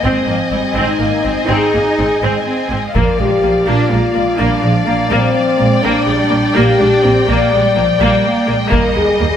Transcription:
Already playing: violin section D#5
0.03 double bass section G#1, cello section G#3, french horn section C4, viola section C4, violin section G#5
0.28 double bass section G#1, cello section F3, viola section A#3
0.51 double bass section G#1, cello section G3, viola section C4
0.76 double bass section G#1, cello section G#3, viola section C4, french horn section D#4
0.99 double bass section G#1, viola section A#3, cello section A#3
1.24 double bass section G#1, viola section C4, cello section C4
1.48 double bass section G#1, viola section C4, cello section D#4, french horn section G#4
1.74 double bass section G#1, viola section A#3
1.98 double bass section G#1, viola section C4
2.23 double bass section G#1, cello section G#3, viola section C4
2.47 cello section C4
2.70 double bass section G#1, cello section G#3, viola section C4
2.94 double bass section A#1, cello section F3, viola section A#3, french horn section A#4, violin section D5 F5, taiko
3.18 double bass section A#1, viola section G#3, french horn section G4
3.42 double bass section A#1, viola section A#3
3.65 double bass section A#1, viola section A#3, cello section D4, french horn section F4
3.90 double bass section A#1, viola section G#3, cello section A#3
4.14 double bass section A#1, cello section G#3, viola section A#3
4.38 double bass section A#1, cello section G3, viola section A#3, french horn section D4
4.62 double bass section A#1, cello section F3, viola section G#3
4.86 double bass section A#1, cello section A#3, viola section A#3
5.10 double bass section A#1, cello section G3, viola section A#3, french horn section C4
5.35 cello section F3
5.59 double bass section A#1, cello section G#3, viola section A#3
5.83 double bass section A#1, cello section G3, viola section A#3, french horn section D4, violin section G5
6.06 double bass section A#1, viola section G#3
6.31 double bass section A#1, viola section A#3
6.54 double bass section A#1, viola section A#3, cello section A#3, french horn section G4
6.78 double bass section A#1, viola section G#3, cello section D4
7.04 double bass section A#1, viola section A#3, cello section C4
7.28 double bass section A#1, viola section A#3, cello section A#3, french horn section D5
7.52 double bass section A#1, cello section G3, viola section G#3
7.76 double bass section A#1, cello section F3, viola section A#3
8.00 double bass section A#1, cello section G3, viola section A#3
8.26 cello section A#3
8.47 double bass section A#1, cello section G#3, viola section A#3
8.70 double bass section D#2, cello section G3, viola section A#3, french horn section A#4, violin section D#5, taiko
8.94 double bass section D#2, viola section G#3, french horn section G#4
9.19 double bass section D#2, viola section A#3

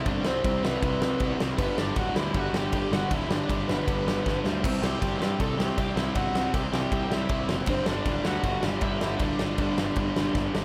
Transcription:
0.05 picked electric bass G1, overdriven electric guitar C3 G3 C4, lead electric guitar D4 D5, kick, crash
0.25 picked electric bass C2, overdriven electric guitar C3 G3 C4, lead electric guitar C4 C5, snare
0.44 picked electric bass C2, overdriven electric guitar C3 G3 C4, kick, crash
0.63 picked electric bass C2, overdriven electric guitar C3 G3 C4, lead electric guitar B3 B4, snare
0.82 picked electric bass C2, overdriven electric guitar C3 G3 C4, kick, crash
1.02 picked electric bass C2, overdriven electric guitar C3 G3 C4, snare
1.20 picked electric bass C2, overdriven electric guitar C3 G3 C4, kick, crash
1.40 picked electric bass C2, overdriven electric guitar C3 G3 C4, snare
1.58 picked electric bass G1, overdriven electric guitar G2 D3 G3, lead electric guitar B3 B4, kick, crash
1.77 picked electric bass G1, overdriven electric guitar G2 D3 G3, lead electric guitar D4 D5, snare
1.96 picked electric bass D1, overdriven electric guitar G2 D3 G3, lead electric guitar F#4 F#5, kick, crash
2.15 picked electric bass D2, overdriven electric guitar G2 D3 G3, lead electric guitar E4 E5, snare
2.34 picked electric bass G1, overdriven electric guitar G2 D3 G3, lead electric guitar F#4 F#5, kick, crash
2.53 picked electric bass G1, overdriven electric guitar G2 D3 G3, lead electric guitar G4, snare
2.57 lead electric guitar G5
2.72 picked electric bass G1, overdriven electric guitar G2 D3 G3, kick, crash
2.91 picked electric bass G1, overdriven electric guitar G2 D3 G3, lead electric guitar F#4 F#5, snare
3.11 picked electric bass D1, overdriven electric guitar G2 D3 G3, lead electric guitar E4 E5, kick, crash
3.29 picked electric bass G1, overdriven electric guitar G2 D3 G3, lead electric guitar D4 D5, snare
3.49 picked electric bass G1, overdriven electric guitar G2 D3 G3, kick, crash
3.68 picked electric bass G1, overdriven electric guitar G2 D3 G3, lead electric guitar B3 B4, snare
3.88 picked electric bass G1, overdriven electric guitar G2 D3 G3, kick, crash
4.06 picked electric bass G1, overdriven electric guitar G2 D3 G3, snare
4.26 picked electric bass G1, overdriven electric guitar G2 D3 G3, kick, snare
4.45 picked electric bass D2, overdriven electric guitar G2 D3 G3, snare
4.64 picked electric bass C2, overdriven electric guitar C3 G3 C4, kick, crash
4.82 picked electric bass C2, overdriven electric guitar C3 G3 C4, lead electric guitar G4 G5, snare
5.02 picked electric bass G1, overdriven electric guitar C3 G3 C4, kick, crash
5.19 picked electric bass G2, overdriven electric guitar C3 G3 C4, lead electric guitar G4 G5, snare
5.40 picked electric bass C2, overdriven electric guitar C3 G3 C4, lead electric guitar A4 A5, kick, crash
5.57 picked electric bass C2, overdriven electric guitar C3 G3 C4, lead electric guitar G4 G5, snare
5.78 picked electric bass C2, overdriven electric guitar C3 G3 C4, kick, crash
5.96 picked electric bass C2, overdriven electric guitar C3 G3 C4, lead electric guitar E4 E5, snare
6.15 picked electric bass G1, overdriven electric guitar C3 G3 C4, lead electric guitar F#4 F#5, kick, crash
6.34 picked electric bass C2, overdriven electric guitar C3 G3 C4, snare
6.54 picked electric bass C2, overdriven electric guitar C3 G3 C4, lead electric guitar G4 G5, kick, crash
6.73 picked electric bass C2, overdriven electric guitar C3 G3 C4, lead electric guitar G4 G5, snare
6.92 picked electric bass C2, overdriven electric guitar C3 G3 C4, kick, crash
7.10 picked electric bass C2, overdriven electric guitar C3 G3 C4, lead electric guitar E4 E5, snare
7.29 picked electric bass C2, overdriven electric guitar C3 G3 C4, kick, crash
7.48 picked electric bass F#1, overdriven electric guitar C3 G3 C4, snare
7.66 picked electric bass G1, overdriven electric guitar G2 D3 G3, lead electric guitar C4 C5, kick, crash
7.86 picked electric bass G1, overdriven electric guitar G2 D3 G3, lead electric guitar D4 D5, snare
8.05 picked electric bass D1, overdriven electric guitar G2 D3 G3, kick, crash
8.25 picked electric bass D2, overdriven electric guitar G2 D3 G3, lead electric guitar F#4 F#5, snare
8.43 picked electric bass G1, overdriven electric guitar G2 D3 G3, kick, crash
8.63 picked electric bass G1, overdriven electric guitar G2 D3 G3, snare
8.81 picked electric bass G1, overdriven electric guitar G2 D3 G3, lead electric guitar E4 E5, kick, crash
9.01 picked electric bass G1, overdriven electric guitar G2 D3 G3, snare
9.19 picked electric bass D1, overdriven electric guitar G2 D3 G3, lead electric guitar D4 D5, kick, crash
9.39 picked electric bass G1, overdriven electric guitar G2 D3 G3, snare
9.58 picked electric bass G1, overdriven electric guitar G2 D3 G3, kick, crash
9.77 picked electric bass G1, overdriven electric guitar G2 D3 G3, snare
9.96 picked electric bass G1, overdriven electric guitar G2 D3 G3, kick, crash
10.16 picked electric bass G1, overdriven electric guitar G2 D3 G3, snare
10.35 picked electric bass G1, overdriven electric guitar G2 D3 G3, kick, snare
10.54 picked electric bass G1, overdriven electric guitar G2 D3 G3, snare

